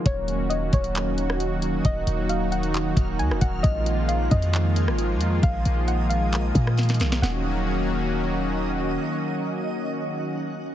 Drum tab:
HH |x---x---x---x-x-x---x---x---x---|x---x---x---x-x-x---x---x---x---|x---x---x---x-x-x---x---x---x---|x---x---x---x---x---x---xxxxx---|
CP |----------------x---------------|----------------x---------------|----------------x---------------|----------------x---------------|
SD |----------------------r---------|--------------------------r-----|----------------------r---------|----------------------r-o-o-o-o-|
BD |o-----------o-------------------|o-------------------o-------o---|o-----------o-------------------|o-------------------o-----------|

HH |--------------------------------|--------------------------------|
CP |--------------------------------|--------------------------------|
SD |o-------------------------------|--------------------------------|
BD |--------------------------------|--------------------------------|